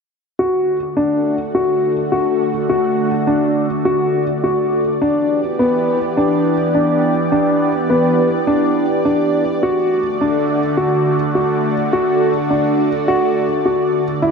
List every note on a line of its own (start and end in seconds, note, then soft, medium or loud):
0.39 4.97 D3 medium
0.39 4.97 A3 medium
0.39 0.76 F#4 medium
0.39 4.97 F#4 medium
0.39 14.20 D5 medium
0.97 1.34 D4 medium
1.55 1.92 F#4 medium
2.12 2.49 F#4 medium
2.69 3.07 F#4 medium
3.27 3.64 D4 medium
3.85 4.22 F#4 medium
4.44 4.80 F#4 medium
5.00 9.58 E3 medium
5.00 9.58 B3 medium
5.00 5.38 D4 medium
5.00 9.58 G4 medium
5.59 5.96 B3 medium
6.17 6.54 D4 medium
6.75 7.11 D4 medium
7.32 7.69 D4 medium
7.90 8.27 B3 medium
8.47 8.84 D4 medium
9.05 9.42 D4 medium
9.62 14.20 D3 medium
9.62 14.20 A3 medium
9.62 14.20 F#4 medium
9.62 10.00 F#4 medium
10.21 10.58 D4 medium
10.77 11.14 F#4 medium
11.35 11.72 F#4 medium
11.93 12.30 F#4 medium
12.50 12.87 D4 medium
13.08 13.45 F#4 medium
13.66 14.03 F#4 medium
14.22 14.31 C3 medium
14.22 14.31 G3 medium
14.22 14.31 E4 medium
14.22 14.31 C5 medium